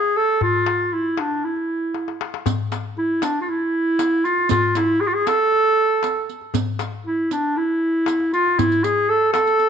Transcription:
Already playing: G#4
0.04 darbuka ka
0.17 A4
0.41 F4, darbuka dum
0.54 darbuka ka
0.66 darbuka tek
0.92 E4, darbuka ka
1.17 D4, darbuka tek
1.31 darbuka ka
1.44 E4
1.56 darbuka ka
1.94 darbuka tek
2.08 darbuka ka
2.21 darbuka tek
2.34 darbuka ka
2.46 riq, darbuka dum
2.72 riq, darbuka tek
2.97 E4, darbuka ka
3.22 D4, riq, darbuka tek
3.41 F4
3.48 E4, darbuka ka
3.99 riq, darbuka tek
4.25 F4, riq
4.38 darbuka ka
4.49 F4, riq, darbuka dum
4.75 E4, riq, darbuka tek
5.01 G#4, darbuka ka
5.07 F4
5.13 G#4
5.27 A4, riq, darbuka tek
5.52 darbuka ka
6.03 riq, darbuka tek
6.16 darbuka ka
6.29 riq
6.41 darbuka ka
6.54 riq, darbuka dum
6.79 riq, darbuka tek
7.05 E4, darbuka ka
7.31 D4, riq
7.56 E4, darbuka ka
8.06 riq, darbuka tek
8.20 darbuka ka
8.33 F4, riq
8.46 darbuka ka
8.59 E4, riq, darbuka dum
8.72 riq
8.84 G#4, riq
8.97 darbuka ka
9.09 A4, darbuka ka
9.33 A4, riq, darbuka tek
9.47 riq
9.59 riq

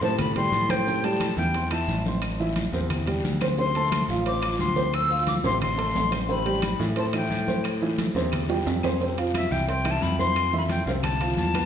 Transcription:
0.01 A2 C3 C4 C5 A5, short guiro, maracas
0.18 B5, high conga, low conga, high timbale, long guiro, claves, maracas
0.36 G3 G4 G5 C6, high conga, low conga, high timbale, maracas
0.52 A2, high conga, short guiro, maracas
0.69 C4 C5 G5 C6, high conga, high timbale, short guiro, claves, maracas
0.87 C3 C4 C5, high conga, long guiro, maracas
1.03 G3 G4 G5 A5, high conga, high timbale, maracas
1.20 high conga, high timbale, short guiro, claves, maracas
1.37 E2 E3 E4 E5 G5, high conga, short guiro, maracas
1.54 C4 C5 C6, high conga, high timbale, long guiro, maracas
1.71 E3 E4 E5 A5, high conga, high timbale, claves, maracas
1.88 A1, high conga, short guiro, maracas
2.05 C4 C5 C6, high conga, short guiro, maracas
2.22 high conga, high timbale, long guiro, claves, maracas
2.40 E3 E4 E5, high conga, maracas
2.56 high conga, high timbale, short guiro, maracas
2.73 E2 C3 C4 C5, short guiro, maracas
2.90 high conga, low conga, high timbale, long guiro, claves, maracas
3.07 G3 G4 G5, high conga, low conga, high timbale, maracas
3.24 D2, high conga, short guiro, maracas
3.41 C4 C5 C6, high conga, high timbale, short guiro, claves, maracas
3.58 C3 C4 C5 C6, high conga, long guiro, maracas
3.75 A3 A4 A5, high conga, high timbale, maracas
3.92 high conga, high timbale, short guiro, claves, maracas
4.09 A1 F3 F4 F5, high conga, short guiro, maracas
4.26 C4 C5 C6 D6, high conga, high timbale, long guiro, maracas
4.42 F3 F4 F5, high conga, high timbale, claves, maracas
4.59 D2 C6, high conga, short guiro, maracas
4.76 C4 C5 C6, high conga, short guiro, maracas
4.93 E6, high conga, high timbale, long guiro, claves, maracas
5.10 F3 F4 F5, high conga, maracas
5.27 D6, high conga, high timbale, short guiro, maracas
5.44 A1 C3 C4 C5 C6, short guiro, maracas
5.61 C6, high conga, low conga, high timbale, long guiro, claves, maracas
5.77 A3 A4 A5, high conga, high timbale, maracas
5.95 A1, high conga, low timbale, short guiro, maracas
6.11 C4 C5 C6, high conga, high timbale, short guiro, claves, maracas
6.29 C3 C4 C5 B5, high conga, long guiro, maracas
6.46 G3 G4 G5, high conga, high timbale, maracas
6.62 high conga, high timbale, short guiro, claves, maracas
6.79 A2 E3 E4 E5, high conga, short guiro, maracas
6.96 C4 C5 A5 C6, high conga, high timbale, long guiro, maracas
7.13 E3 E4 E5 G5, high conga, high timbale, claves, maracas
7.30 A2, high conga, short guiro, maracas
7.48 C4 C5 C6, high conga, short guiro, maracas
7.64 high conga, high timbale, long guiro, claves, maracas
7.81 E3 E4 E5, high conga, maracas
7.98 high conga, high timbale, short guiro, maracas
8.15 E2 C3 C4 C5, short guiro, maracas
8.32 high conga, low conga, high timbale, long guiro, claves, maracas
8.49 G3 G4 G5, high conga, high timbale, maracas
8.66 F2, high conga, low timbale, short guiro, maracas
8.83 C4 C5 C6, high conga, low timbale, short guiro, claves, maracas
9.00 C3 C4 C5, high conga, long guiro, maracas
9.17 F3 F4 F5, high conga, high timbale, maracas
9.34 E5, high conga, high timbale, short guiro, claves, maracas
9.51 C2 E3 E4 E5 G5, high conga, short guiro, maracas
9.68 C4 C5 G5 C6, high conga, high timbale, long guiro, maracas
9.85 E3 E4 E5, high conga, high timbale, claves, maracas
9.91 A5
10.01 F2 B5, high conga, short guiro, maracas
10.19 C4 C5 C6, high conga, short guiro, maracas
10.36 high conga, high timbale, long guiro, claves, maracas
10.53 E3 E4 E5, high conga, maracas
10.58 B5
10.69 G5, high conga, high timbale, short guiro, maracas
10.86 C2 C3 C4 C5 F5, short guiro, maracas
11.03 A5, high conga, low conga, high timbale, long guiro, claves, maracas
11.20 F3 F4 F5, high conga, low conga, high timbale, maracas
11.37 E2 A5, high conga, short guiro, maracas
11.54 B3 B4 B5, high conga, high timbale, short guiro, claves, maracas

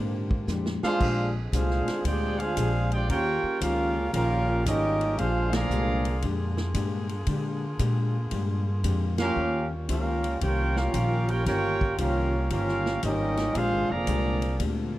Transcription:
Already playing: G#2 A#2 D3 F3 G#3 A#3 C4 G4
0.00 D4 G4
0.31 kick
0.47 F2 A#2 G#3 D4 G4, snare, hi-hat pedal
0.66 snare
0.83 G#3 D4 F4 G#4 C5 F5, muted upright bass stroke, snare
0.99 A#1 A#2 D3 G#3 C4 G#4, kick, crash
1.03 D4 G4
1.52 C2 A#2 G#3 D4 F4 G4 G#4 C5 F5, kick, hi-hat pedal, ride
1.70 snare
1.87 muted upright bass stroke, snare, ride
2.04 D2 A#2 G#3 D4 F4 G4 C5 D5 G5, kick, ride
2.39 G#3 D4 F4 G#4 C5 F5, ride
2.57 A#1 A#2 G#3 D4 G4, kick, hi-hat pedal, ride
2.92 G#3 D4 F4 G4 C5 D5 G5, ride
3.09 D#2 C#3 D#3 G3 A#3 C#4 F4 G4 A#4 C5 C#5 G5, kick, ride
3.43 muted upright bass stroke
3.61 C#2 D#3 A#3 C#4 F4 G4 A#4 C5 F5, kick, hi-hat pedal, ride
4.13 A#1 D#3 A#3 C#4 F4 G4 A#4 C5 F5, kick, ride
4.66 G#1 D#3 G3 A#3 C#4 D#4 G4 A#4 C5 D#5, kick, hi-hat pedal, ride
5.01 ride
5.17 A#1 A#2 D3 G#3 D4 F4 G4 G#4 C5 F5, kick, ride
5.53 D3 F3 A#3 G#4 D5 F5 A#5, snare, ride
5.69 C2 A#2 G#3 D4 G4, hi-hat pedal
6.05 ride
6.22 F2 A#2 G#3 D4 G4, kick, ride
6.57 snare
6.74 G2 A#2 G#3 D4 G4, kick, hi-hat pedal, ride
7.09 ride
7.27 A#2 D3 G#3 D4 G4, kick, ride
7.79 A#2 G#3 D4 G4, kick, hi-hat pedal, ride
8.31 G2 A#2 G#3 D4 G4, kick, ride
8.83 F2 A#2 G#3 D4 G4, kick, hi-hat pedal, ride
9.18 A#3 C#4 F4 G4 A#4 F5, snare, ride
9.35 D#2 D#3 G3 C#4 F4 G4 C5
9.89 C#2 D#3 A#3 C#4 F4 G4 A#4 C5 F5, kick, hi-hat pedal, ride
10.24 ride
10.41 C2 D#3 A#3 C#4 F4 G4 C5 C#5 G5, kick, ride
10.45 A#4
10.76 A#3 C#4 F4 G4 A#4 F5, snare
10.93 A#1 D#3 C#4 G4 C5, kick, hi-hat pedal, ride
11.29 A#3 C#4 F4 G4 A#4 C#5 G5, ride
11.46 G1 D#3 A#3 C#4 F4 G4 A#4 C5 C#5 G5, kick, snare, ride
11.81 kick
11.98 C2 D#3 A#3 C#4 F4 G4 A#4 C5 F5, kick, hi-hat pedal, ride
12.50 G1 D#3 A#3 C#4 F4 G4 A#4 C5 F5, kick, ride
12.68 snare
12.86 snare
13.03 G#1 D#3 G3 A#3 C#4 D#4 G4 A#4 C5 D#5, kick, hi-hat pedal, ride
13.37 snare, ride
13.55 A#1 A#2 D3 G#3 A#3 C4 D4 F4 G4 G#4 C5 F5, kick, ride
13.72 G#1
13.90 F1 D3 F3 A#3 G#4 D5 F5 A#5
14.07 C2 A#2 G#3 D4 G4, kick, hi-hat pedal, ride
14.42 ride
14.59 D2 A#2 G#3 D4 G4, kick, ride

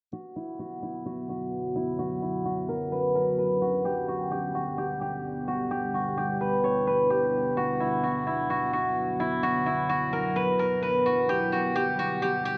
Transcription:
0.13 D3 F#3 B3 F#4
0.36 E4
0.59 F#4
0.83 E4
1.06 F#4
1.29 F#4
1.76 E4
1.99 C#4 F#4
2.22 E4
2.45 F#4
2.69 A#4
2.92 B4
3.15 A#4
3.38 B4
3.62 F#4
3.85 G3 B3 G4 F#5
4.08 F#4
4.31 G4
4.55 F#4
4.78 G4
5.01 G4
5.48 F#4
5.71 E4 G4
5.94 F#4
6.17 G4
6.41 B4
6.64 C#5
6.87 B4
7.10 G4
7.57 F#3 F#4
7.80 E4
8.03 F#4
8.27 E4
8.50 F#4
8.73 F#4
9.20 E4
9.43 E4 F#4
9.66 E4
9.89 F#4
10.13 A#4
10.36 B4
10.59 A#4
10.83 B4
11.06 F#4
11.29 D3 G3 G4
11.52 F#4
11.76 G4
11.99 F#4
12.22 G4
12.45 G4

